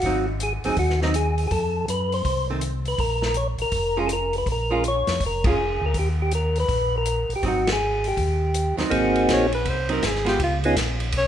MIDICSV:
0, 0, Header, 1, 6, 480
1, 0, Start_track
1, 0, Tempo, 369914
1, 42, Time_signature, 4, 2, 24, 8
1, 14629, End_track
2, 0, Start_track
2, 0, Title_t, "Alto saxophone"
2, 0, Program_c, 0, 65
2, 12105, Note_on_c, 0, 73, 76
2, 12365, Note_off_c, 0, 73, 0
2, 12384, Note_on_c, 0, 71, 81
2, 12581, Note_on_c, 0, 72, 91
2, 12601, Note_off_c, 0, 71, 0
2, 12863, Note_off_c, 0, 72, 0
2, 12876, Note_on_c, 0, 70, 73
2, 13066, Note_on_c, 0, 68, 73
2, 13086, Note_off_c, 0, 70, 0
2, 13342, Note_off_c, 0, 68, 0
2, 13350, Note_on_c, 0, 67, 81
2, 13490, Note_off_c, 0, 67, 0
2, 13543, Note_on_c, 0, 65, 72
2, 13711, Note_off_c, 0, 65, 0
2, 14499, Note_on_c, 0, 73, 79
2, 14629, Note_off_c, 0, 73, 0
2, 14629, End_track
3, 0, Start_track
3, 0, Title_t, "Tonewheel organ"
3, 0, Program_c, 1, 16
3, 0, Note_on_c, 1, 66, 87
3, 341, Note_off_c, 1, 66, 0
3, 555, Note_on_c, 1, 68, 82
3, 687, Note_off_c, 1, 68, 0
3, 852, Note_on_c, 1, 68, 76
3, 1000, Note_off_c, 1, 68, 0
3, 1023, Note_on_c, 1, 66, 80
3, 1302, Note_off_c, 1, 66, 0
3, 1340, Note_on_c, 1, 63, 74
3, 1499, Note_off_c, 1, 63, 0
3, 1500, Note_on_c, 1, 68, 75
3, 1897, Note_off_c, 1, 68, 0
3, 1913, Note_on_c, 1, 68, 62
3, 1968, Note_on_c, 1, 69, 82
3, 1969, Note_off_c, 1, 68, 0
3, 2411, Note_off_c, 1, 69, 0
3, 2466, Note_on_c, 1, 71, 81
3, 2773, Note_off_c, 1, 71, 0
3, 2777, Note_on_c, 1, 72, 82
3, 3211, Note_off_c, 1, 72, 0
3, 3735, Note_on_c, 1, 71, 87
3, 3890, Note_on_c, 1, 70, 81
3, 3897, Note_off_c, 1, 71, 0
3, 4371, Note_on_c, 1, 73, 89
3, 4380, Note_off_c, 1, 70, 0
3, 4509, Note_off_c, 1, 73, 0
3, 4694, Note_on_c, 1, 70, 98
3, 5177, Note_off_c, 1, 70, 0
3, 5189, Note_on_c, 1, 68, 84
3, 5276, Note_on_c, 1, 69, 64
3, 5301, Note_off_c, 1, 68, 0
3, 5319, Note_off_c, 1, 69, 0
3, 5357, Note_on_c, 1, 70, 88
3, 5659, Note_off_c, 1, 70, 0
3, 5685, Note_on_c, 1, 71, 88
3, 5818, Note_off_c, 1, 71, 0
3, 5863, Note_on_c, 1, 70, 83
3, 6280, Note_off_c, 1, 70, 0
3, 6332, Note_on_c, 1, 73, 87
3, 6800, Note_off_c, 1, 73, 0
3, 6828, Note_on_c, 1, 70, 83
3, 7086, Note_off_c, 1, 70, 0
3, 7130, Note_on_c, 1, 68, 85
3, 7595, Note_off_c, 1, 68, 0
3, 7605, Note_on_c, 1, 70, 83
3, 7752, Note_off_c, 1, 70, 0
3, 7772, Note_on_c, 1, 67, 76
3, 7901, Note_off_c, 1, 67, 0
3, 8070, Note_on_c, 1, 67, 79
3, 8210, Note_off_c, 1, 67, 0
3, 8238, Note_on_c, 1, 70, 81
3, 8539, Note_off_c, 1, 70, 0
3, 8561, Note_on_c, 1, 71, 96
3, 9030, Note_off_c, 1, 71, 0
3, 9052, Note_on_c, 1, 70, 97
3, 9516, Note_off_c, 1, 70, 0
3, 9546, Note_on_c, 1, 67, 75
3, 9669, Note_off_c, 1, 67, 0
3, 9706, Note_on_c, 1, 66, 75
3, 9993, Note_off_c, 1, 66, 0
3, 10023, Note_on_c, 1, 68, 94
3, 10481, Note_off_c, 1, 68, 0
3, 10489, Note_on_c, 1, 67, 69
3, 11369, Note_off_c, 1, 67, 0
3, 11550, Note_on_c, 1, 58, 65
3, 11550, Note_on_c, 1, 63, 59
3, 11556, Note_on_c, 1, 66, 57
3, 11560, Note_on_c, 1, 68, 70
3, 11561, Note_on_c, 1, 60, 57
3, 12285, Note_off_c, 1, 58, 0
3, 12285, Note_off_c, 1, 63, 0
3, 12288, Note_off_c, 1, 66, 0
3, 12290, Note_off_c, 1, 60, 0
3, 12290, Note_off_c, 1, 68, 0
3, 13821, Note_on_c, 1, 59, 67
3, 13823, Note_on_c, 1, 61, 65
3, 13824, Note_on_c, 1, 65, 60
3, 13826, Note_on_c, 1, 63, 64
3, 13829, Note_on_c, 1, 68, 75
3, 13960, Note_off_c, 1, 59, 0
3, 13961, Note_off_c, 1, 61, 0
3, 13961, Note_off_c, 1, 65, 0
3, 13962, Note_off_c, 1, 63, 0
3, 13964, Note_off_c, 1, 68, 0
3, 14629, End_track
4, 0, Start_track
4, 0, Title_t, "Hollow-body jazz guitar"
4, 0, Program_c, 2, 26
4, 61, Note_on_c, 2, 54, 58
4, 75, Note_on_c, 2, 63, 70
4, 76, Note_on_c, 2, 60, 62
4, 330, Note_off_c, 2, 54, 0
4, 338, Note_off_c, 2, 60, 0
4, 338, Note_off_c, 2, 63, 0
4, 840, Note_on_c, 2, 54, 59
4, 846, Note_on_c, 2, 60, 63
4, 864, Note_on_c, 2, 63, 62
4, 988, Note_off_c, 2, 54, 0
4, 991, Note_off_c, 2, 60, 0
4, 1000, Note_off_c, 2, 63, 0
4, 1327, Note_on_c, 2, 54, 61
4, 1339, Note_on_c, 2, 60, 65
4, 1342, Note_on_c, 2, 63, 69
4, 1472, Note_off_c, 2, 54, 0
4, 1478, Note_off_c, 2, 60, 0
4, 1479, Note_off_c, 2, 63, 0
4, 3245, Note_on_c, 2, 51, 51
4, 3249, Note_on_c, 2, 57, 53
4, 3252, Note_on_c, 2, 60, 64
4, 3390, Note_off_c, 2, 51, 0
4, 3393, Note_off_c, 2, 57, 0
4, 3394, Note_off_c, 2, 60, 0
4, 5151, Note_on_c, 2, 56, 63
4, 5154, Note_on_c, 2, 61, 62
4, 5163, Note_on_c, 2, 65, 63
4, 5304, Note_off_c, 2, 56, 0
4, 5305, Note_off_c, 2, 61, 0
4, 5310, Note_off_c, 2, 65, 0
4, 6106, Note_on_c, 2, 56, 64
4, 6114, Note_on_c, 2, 61, 66
4, 6121, Note_on_c, 2, 65, 75
4, 6261, Note_off_c, 2, 56, 0
4, 6265, Note_off_c, 2, 61, 0
4, 6269, Note_off_c, 2, 65, 0
4, 7066, Note_on_c, 2, 56, 58
4, 7079, Note_on_c, 2, 61, 61
4, 7091, Note_on_c, 2, 65, 68
4, 7222, Note_off_c, 2, 56, 0
4, 7228, Note_off_c, 2, 61, 0
4, 7234, Note_off_c, 2, 65, 0
4, 9641, Note_on_c, 2, 54, 63
4, 9644, Note_on_c, 2, 60, 60
4, 9662, Note_on_c, 2, 63, 68
4, 9921, Note_off_c, 2, 54, 0
4, 9922, Note_off_c, 2, 60, 0
4, 9932, Note_off_c, 2, 63, 0
4, 11386, Note_on_c, 2, 54, 69
4, 11398, Note_on_c, 2, 60, 71
4, 11403, Note_on_c, 2, 63, 71
4, 12005, Note_off_c, 2, 54, 0
4, 12011, Note_off_c, 2, 60, 0
4, 12013, Note_off_c, 2, 63, 0
4, 12833, Note_on_c, 2, 54, 60
4, 12837, Note_on_c, 2, 60, 73
4, 12840, Note_on_c, 2, 63, 68
4, 12985, Note_off_c, 2, 54, 0
4, 12988, Note_off_c, 2, 60, 0
4, 12989, Note_off_c, 2, 63, 0
4, 13296, Note_on_c, 2, 56, 68
4, 13303, Note_on_c, 2, 59, 66
4, 13318, Note_on_c, 2, 65, 72
4, 13457, Note_off_c, 2, 56, 0
4, 13461, Note_off_c, 2, 59, 0
4, 13468, Note_off_c, 2, 65, 0
4, 14629, End_track
5, 0, Start_track
5, 0, Title_t, "Tonewheel organ"
5, 0, Program_c, 3, 16
5, 37, Note_on_c, 3, 32, 80
5, 778, Note_off_c, 3, 32, 0
5, 836, Note_on_c, 3, 32, 36
5, 920, Note_off_c, 3, 32, 0
5, 995, Note_on_c, 3, 39, 82
5, 1909, Note_off_c, 3, 39, 0
5, 1957, Note_on_c, 3, 41, 75
5, 2405, Note_off_c, 3, 41, 0
5, 2438, Note_on_c, 3, 42, 71
5, 2885, Note_off_c, 3, 42, 0
5, 2914, Note_on_c, 3, 36, 78
5, 3829, Note_off_c, 3, 36, 0
5, 3871, Note_on_c, 3, 34, 78
5, 4615, Note_off_c, 3, 34, 0
5, 4646, Note_on_c, 3, 34, 38
5, 4737, Note_off_c, 3, 34, 0
5, 4824, Note_on_c, 3, 29, 79
5, 5744, Note_off_c, 3, 29, 0
5, 5790, Note_on_c, 3, 34, 73
5, 6534, Note_off_c, 3, 34, 0
5, 6583, Note_on_c, 3, 41, 67
5, 6745, Note_off_c, 3, 41, 0
5, 6749, Note_on_c, 3, 29, 86
5, 7494, Note_off_c, 3, 29, 0
5, 7543, Note_on_c, 3, 38, 72
5, 7705, Note_off_c, 3, 38, 0
5, 7707, Note_on_c, 3, 39, 79
5, 8626, Note_off_c, 3, 39, 0
5, 8671, Note_on_c, 3, 34, 81
5, 9415, Note_off_c, 3, 34, 0
5, 9463, Note_on_c, 3, 34, 39
5, 9550, Note_off_c, 3, 34, 0
5, 9638, Note_on_c, 3, 32, 80
5, 10552, Note_off_c, 3, 32, 0
5, 10596, Note_on_c, 3, 39, 78
5, 11338, Note_off_c, 3, 39, 0
5, 11385, Note_on_c, 3, 39, 37
5, 11472, Note_off_c, 3, 39, 0
5, 11567, Note_on_c, 3, 32, 74
5, 12031, Note_off_c, 3, 32, 0
5, 12045, Note_on_c, 3, 34, 78
5, 12509, Note_off_c, 3, 34, 0
5, 12522, Note_on_c, 3, 36, 75
5, 12988, Note_off_c, 3, 36, 0
5, 13005, Note_on_c, 3, 32, 79
5, 13470, Note_off_c, 3, 32, 0
5, 13485, Note_on_c, 3, 37, 79
5, 13950, Note_off_c, 3, 37, 0
5, 13962, Note_on_c, 3, 34, 83
5, 14428, Note_off_c, 3, 34, 0
5, 14440, Note_on_c, 3, 35, 86
5, 14629, Note_off_c, 3, 35, 0
5, 14629, End_track
6, 0, Start_track
6, 0, Title_t, "Drums"
6, 18, Note_on_c, 9, 46, 43
6, 36, Note_on_c, 9, 36, 29
6, 148, Note_off_c, 9, 46, 0
6, 166, Note_off_c, 9, 36, 0
6, 518, Note_on_c, 9, 42, 49
6, 648, Note_off_c, 9, 42, 0
6, 829, Note_on_c, 9, 46, 38
6, 959, Note_off_c, 9, 46, 0
6, 994, Note_on_c, 9, 46, 45
6, 999, Note_on_c, 9, 36, 32
6, 1123, Note_off_c, 9, 46, 0
6, 1129, Note_off_c, 9, 36, 0
6, 1163, Note_on_c, 9, 38, 28
6, 1293, Note_off_c, 9, 38, 0
6, 1321, Note_on_c, 9, 38, 39
6, 1451, Note_off_c, 9, 38, 0
6, 1479, Note_on_c, 9, 42, 51
6, 1609, Note_off_c, 9, 42, 0
6, 1788, Note_on_c, 9, 46, 36
6, 1917, Note_off_c, 9, 46, 0
6, 1958, Note_on_c, 9, 46, 42
6, 1960, Note_on_c, 9, 36, 30
6, 2088, Note_off_c, 9, 46, 0
6, 2090, Note_off_c, 9, 36, 0
6, 2444, Note_on_c, 9, 42, 53
6, 2573, Note_off_c, 9, 42, 0
6, 2754, Note_on_c, 9, 46, 36
6, 2884, Note_off_c, 9, 46, 0
6, 2917, Note_on_c, 9, 46, 42
6, 2918, Note_on_c, 9, 36, 34
6, 3047, Note_off_c, 9, 46, 0
6, 3048, Note_off_c, 9, 36, 0
6, 3389, Note_on_c, 9, 42, 49
6, 3519, Note_off_c, 9, 42, 0
6, 3702, Note_on_c, 9, 46, 34
6, 3832, Note_off_c, 9, 46, 0
6, 3872, Note_on_c, 9, 36, 32
6, 3872, Note_on_c, 9, 46, 43
6, 4002, Note_off_c, 9, 36, 0
6, 4002, Note_off_c, 9, 46, 0
6, 4182, Note_on_c, 9, 38, 48
6, 4312, Note_off_c, 9, 38, 0
6, 4335, Note_on_c, 9, 42, 50
6, 4465, Note_off_c, 9, 42, 0
6, 4650, Note_on_c, 9, 46, 37
6, 4780, Note_off_c, 9, 46, 0
6, 4821, Note_on_c, 9, 46, 47
6, 4826, Note_on_c, 9, 36, 34
6, 4951, Note_off_c, 9, 46, 0
6, 4956, Note_off_c, 9, 36, 0
6, 5306, Note_on_c, 9, 42, 51
6, 5436, Note_off_c, 9, 42, 0
6, 5619, Note_on_c, 9, 46, 36
6, 5748, Note_off_c, 9, 46, 0
6, 5790, Note_on_c, 9, 36, 31
6, 5795, Note_on_c, 9, 46, 41
6, 5920, Note_off_c, 9, 36, 0
6, 5924, Note_off_c, 9, 46, 0
6, 6277, Note_on_c, 9, 42, 52
6, 6407, Note_off_c, 9, 42, 0
6, 6581, Note_on_c, 9, 46, 38
6, 6584, Note_on_c, 9, 38, 48
6, 6711, Note_off_c, 9, 46, 0
6, 6713, Note_off_c, 9, 38, 0
6, 6754, Note_on_c, 9, 36, 32
6, 6754, Note_on_c, 9, 46, 44
6, 6883, Note_off_c, 9, 46, 0
6, 6884, Note_off_c, 9, 36, 0
6, 7061, Note_on_c, 9, 51, 67
6, 7063, Note_on_c, 9, 36, 76
6, 7191, Note_off_c, 9, 51, 0
6, 7192, Note_off_c, 9, 36, 0
6, 7710, Note_on_c, 9, 46, 42
6, 7712, Note_on_c, 9, 36, 31
6, 7839, Note_off_c, 9, 46, 0
6, 7842, Note_off_c, 9, 36, 0
6, 8192, Note_on_c, 9, 42, 49
6, 8322, Note_off_c, 9, 42, 0
6, 8506, Note_on_c, 9, 46, 38
6, 8636, Note_off_c, 9, 46, 0
6, 8675, Note_on_c, 9, 36, 32
6, 8677, Note_on_c, 9, 46, 43
6, 8805, Note_off_c, 9, 36, 0
6, 8807, Note_off_c, 9, 46, 0
6, 9154, Note_on_c, 9, 42, 52
6, 9284, Note_off_c, 9, 42, 0
6, 9472, Note_on_c, 9, 46, 34
6, 9601, Note_off_c, 9, 46, 0
6, 9638, Note_on_c, 9, 46, 43
6, 9640, Note_on_c, 9, 36, 31
6, 9768, Note_off_c, 9, 46, 0
6, 9769, Note_off_c, 9, 36, 0
6, 9956, Note_on_c, 9, 51, 61
6, 9959, Note_on_c, 9, 38, 78
6, 10086, Note_off_c, 9, 51, 0
6, 10088, Note_off_c, 9, 38, 0
6, 10432, Note_on_c, 9, 46, 39
6, 10562, Note_off_c, 9, 46, 0
6, 10603, Note_on_c, 9, 36, 33
6, 10605, Note_on_c, 9, 46, 44
6, 10733, Note_off_c, 9, 36, 0
6, 10735, Note_off_c, 9, 46, 0
6, 11084, Note_on_c, 9, 42, 54
6, 11214, Note_off_c, 9, 42, 0
6, 11397, Note_on_c, 9, 46, 35
6, 11400, Note_on_c, 9, 38, 47
6, 11527, Note_off_c, 9, 46, 0
6, 11529, Note_off_c, 9, 38, 0
6, 11564, Note_on_c, 9, 51, 55
6, 11567, Note_on_c, 9, 36, 20
6, 11694, Note_off_c, 9, 51, 0
6, 11697, Note_off_c, 9, 36, 0
6, 11880, Note_on_c, 9, 51, 44
6, 12009, Note_off_c, 9, 51, 0
6, 12049, Note_on_c, 9, 36, 19
6, 12050, Note_on_c, 9, 44, 58
6, 12050, Note_on_c, 9, 51, 66
6, 12052, Note_on_c, 9, 38, 67
6, 12178, Note_off_c, 9, 36, 0
6, 12180, Note_off_c, 9, 44, 0
6, 12180, Note_off_c, 9, 51, 0
6, 12182, Note_off_c, 9, 38, 0
6, 12358, Note_on_c, 9, 51, 43
6, 12488, Note_off_c, 9, 51, 0
6, 12527, Note_on_c, 9, 51, 56
6, 12528, Note_on_c, 9, 36, 26
6, 12657, Note_off_c, 9, 51, 0
6, 12658, Note_off_c, 9, 36, 0
6, 12831, Note_on_c, 9, 51, 41
6, 12961, Note_off_c, 9, 51, 0
6, 13008, Note_on_c, 9, 36, 18
6, 13009, Note_on_c, 9, 44, 58
6, 13009, Note_on_c, 9, 51, 57
6, 13011, Note_on_c, 9, 38, 67
6, 13138, Note_off_c, 9, 36, 0
6, 13138, Note_off_c, 9, 44, 0
6, 13138, Note_off_c, 9, 51, 0
6, 13141, Note_off_c, 9, 38, 0
6, 13173, Note_on_c, 9, 38, 29
6, 13303, Note_off_c, 9, 38, 0
6, 13317, Note_on_c, 9, 51, 43
6, 13331, Note_on_c, 9, 38, 39
6, 13447, Note_off_c, 9, 51, 0
6, 13461, Note_off_c, 9, 38, 0
6, 13488, Note_on_c, 9, 36, 25
6, 13490, Note_on_c, 9, 51, 56
6, 13618, Note_off_c, 9, 36, 0
6, 13619, Note_off_c, 9, 51, 0
6, 13802, Note_on_c, 9, 51, 47
6, 13931, Note_off_c, 9, 51, 0
6, 13966, Note_on_c, 9, 36, 23
6, 13968, Note_on_c, 9, 44, 57
6, 13968, Note_on_c, 9, 51, 65
6, 13971, Note_on_c, 9, 38, 66
6, 14095, Note_off_c, 9, 36, 0
6, 14098, Note_off_c, 9, 44, 0
6, 14098, Note_off_c, 9, 51, 0
6, 14100, Note_off_c, 9, 38, 0
6, 14274, Note_on_c, 9, 51, 44
6, 14403, Note_off_c, 9, 51, 0
6, 14434, Note_on_c, 9, 51, 64
6, 14441, Note_on_c, 9, 36, 19
6, 14564, Note_off_c, 9, 51, 0
6, 14571, Note_off_c, 9, 36, 0
6, 14629, End_track
0, 0, End_of_file